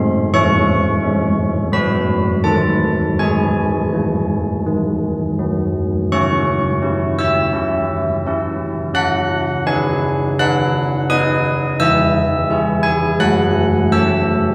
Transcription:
church bells
Already playing: G#3 C5 C6
0.34 E3 C#5 C#6
1.03 G#3
1.72 F#3 B4 B5
2.44 D#3 A4 A5
3.19 G#3 G#4 G#5
3.93 E3
4.66 D#3
5.39 F#3
6.12 C#4 C#5 C#6
6.82 C#4 E4
7.19 E5 E6
7.53 C#4 E4
8.26 C#4 E4
8.94 C#4 F#5 F#6
9.66 D#4 B4 G#5
10.39 D#4 B4 F#5 F#6
11.10 D#4 B4 D#5 D#6
11.80 E3 E5 E6
12.50 E4 G#4
12.83 G#5
13.20 F#3 F#5 F#6
13.92 C#4 A4 E5 E6

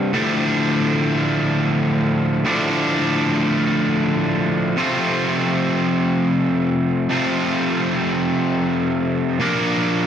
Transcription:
overdriven electric guitar
Already playing: C2 G2 C3 G3 D4
0.13 D2 A2 D3 F3 A3 D4
2.45 D2 A2 D3 F3 A3 D4
4.77 F2 C3 F3 A3 C4 F4
7.09 F2 C3 F3 A3 C4 F4
9.40 A#2 F3 A#3 D4 F4 A#4

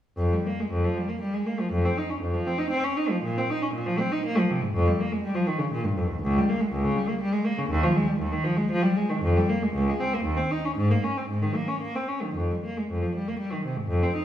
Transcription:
cello
0.17 F2
0.33 G3
0.46 A#3
0.60 G#3
0.71 F2
0.84 F3
0.97 G3
1.09 A#3
1.21 G3
1.34 G#3
1.46 A#3
1.60 F3
1.72 F2
1.85 C4
1.98 D#4
2.10 C#4
2.21 F2
2.34 F3
2.47 C4
2.58 D#4
2.70 C4
2.84 C#4
2.97 D#4
3.10 F3
3.23 A#2
3.38 C4
3.50 D#4
3.62 C#4
3.74 A#2
3.86 F3
3.99 C4
4.12 D#4
4.25 A#3
4.38 F3
4.51 C3
4.62 G#2
4.75 F2
4.87 G3
5.00 A#3
5.12 G#3
5.22 G3
5.35 F3
5.47 D#3
5.58 C#3
5.71 A#2
5.84 G2
5.97 F2
6.09 D#2
6.22 C#2
6.38 G3
6.49 A#3
6.60 G#3
6.72 C#2
6.84 C#3
6.96 G3
7.08 A#3
7.21 G3
7.32 G#3
7.44 A#3
7.58 C#3
7.70 D#2
7.83 F3
7.96 G#3
8.08 G3
8.20 D#2
8.32 D#3
8.44 F3
8.56 G#3
8.71 F3
8.83 G3
8.96 G#3
9.10 D#3
9.22 F2
9.37 G3
9.49 A#3
9.62 G#3
9.74 C#2
9.89 G#3
10.00 C4
10.13 A#3
10.24 D#2
10.37 C4
10.51 D#4
10.65 C#4
10.77 G#2
10.91 A#3
11.04 C#4
11.17 C4
11.29 G#2
11.42 D#3
11.55 A#3
11.68 C#4
11.81 A#3
11.96 C4
12.08 C#4
12.22 D#3
12.35 F2
12.50 G3
12.64 A#3
12.77 G#3
12.90 F2
13.02 F3
13.15 G3
13.28 A#3
13.39 G3
13.52 D#3
13.65 C3
13.77 G#2
13.88 F2
14.03 C4
14.16 D#4

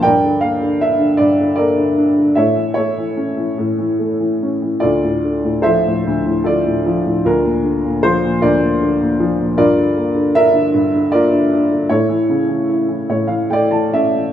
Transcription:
upright piano
0.03 G2 A#4 D5 G5
0.24 D3
0.41 A#3 F5
0.61 D3
0.80 D4 E5
0.99 D3
1.17 G2 D5
1.40 D3
1.56 A#3 A4 A#4 D5
1.78 D3
1.98 D4
2.18 D3
2.35 A2 A4 C#5 E5
2.56 E3
2.74 A3 E4 A4 C#5
2.98 E3
3.17 C#4
3.37 E3
3.58 A2
3.79 E3
3.99 A3
4.20 E3
4.43 C#4
4.62 E3
4.80 D2 F4 A4 D5
5.03 A2
5.24 D3
5.44 A2
5.62 F3 A4 C5 E5
5.87 A2
6.07 D2
6.26 A2
6.44 D3 F4 A4 D5
6.66 A2
6.86 F3
7.06 A2
7.25 D2 D4 F4 A#4
7.45 A#2
7.64 D3
7.85 A#2
8.03 F3 C5
8.24 A#2
8.41 D2 F4 A#4 D5
8.61 A#2
8.81 D3
9.01 A#2
9.20 F3
9.39 A#2
9.57 G2 F4 A#4 D5
9.77 D3
9.97 A#3
10.14 D3
10.35 D4 A#4 E5
10.53 D3
10.74 G2
10.94 D3
11.12 A#3 F4 A#4 D5
11.33 D3
11.51 D4
11.72 D3
11.89 A2 E4 A4 C#5
12.09 E3
12.29 C#3
12.48 E3
12.69 E4
12.88 E3
13.09 A2 C#5
13.27 E3 F5
13.50 A3 D5 G5
13.71 E3 A5
13.93 C#4 E5
14.15 E3

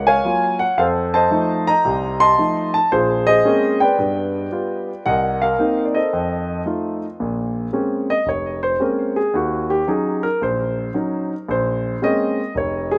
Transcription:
grand piano
Already playing: C#2 A#4
0.07 C#5 F5 G#5
0.25 F#3 A#3 F4
0.59 F#5
0.78 F2 A4 C5 F5
1.14 C5 D#5 A5
1.31 F3 A3 D#4
1.67 D#5 A#5
1.85 C2 C3
2.20 D#5 A5 C6
2.38 F3 A3 D#4
2.74 A5
2.92 A#1 F4 G#4 C5
3.27 G#4 C5 D#5
3.45 G#3 A#3 C4 C#4
3.80 B4 D5 G5
3.98 G2 B3
4.51 G3 B3 F4
5.06 C2 A#4 D#5 F#5
5.42 A#4 F5
5.58 A#3 C4 D#4
5.85 D5
5.95 A4 C5 D#5
6.13 F2
6.66 A3 D#4 F4
7.20 A#1 A#2
7.73 G#3 A#3 C4 C#4
8.10 D#5
8.26 F1 C#5
8.63 C5
8.80 G#3 A#3 C4 C#4 A#4
9.16 G#4
9.34 D#2 F#4
9.70 G4
9.88 F#3 C#4 D#4 G#4
10.23 A#4
10.41 A#1 C5
10.94 F#3 C#4 D#4
11.48 A#1 C5
12.02 G#3 A#3 C4 C#4 D#5
12.55 F1 C#5
12.91 G#4

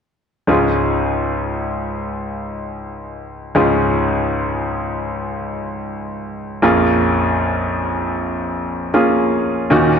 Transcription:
grand piano
0.47 C#2 G#2 G#3 C#4 F4 G#4
3.55 C#2 G#2 G#3 C#4 F4 G#4
6.62 A#1 F2 A#3 C#4 F4 G#4
8.94 A#3 C#4 F4 G#4
9.70 D#2 A#2 A#3 C#4 D#4 F#4

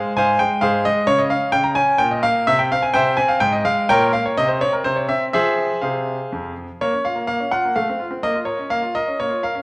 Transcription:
grand piano
Already playing: G#3 G#4 C5 F5
0.17 G#2 C5 F5 G#5
0.39 G#3 G5
0.61 G#2 G#4 C5 F5
0.85 G#3 D#5
1.07 C#3 C#5
1.19 D#5
1.30 C#4 F5
1.52 C#3 G5
1.64 A#5
1.75 C#4 G#5
1.98 A#2 G5
2.11 D#5
2.23 A#3 F5
2.47 C3 E5
2.59 G5
2.72 C4 F5
2.82 G#5
2.93 C3 C5 E5 G5
3.17 C4 G#5
3.28 F5
3.40 G#2 G5
3.52 D#5
3.65 G#3 F5
3.89 A#2 A#4 C#5 G5
4.13 A#3 F5
4.25 C#5
4.37 C3 D#5
4.47 C5
4.61 C4 C#5
4.73 A#4
4.84 C3 C5
4.96 C#5
5.09 C4 E5
5.34 F3 C4 G#4 C5 E5
5.82 C3 G#4 C5 F5
6.32 F2
6.81 A#3 C#5
6.93 C#4
7.04 F4 F5
7.15 A#3
7.27 A#3 F5
7.40 C#4
7.52 F4 F#5
7.65 A#3
7.76 A3 F5
7.90 C4
8.00 F4
8.11 C4
8.23 A#3 D#5
8.35 F4
8.45 A#4 C#5
8.59 C#4
8.70 A#3 F5
8.82 F4
8.95 A#4 D#5
9.08 C#4
9.20 A#3 C#5
9.30 F4
9.43 A#4 F5
9.55 C#4

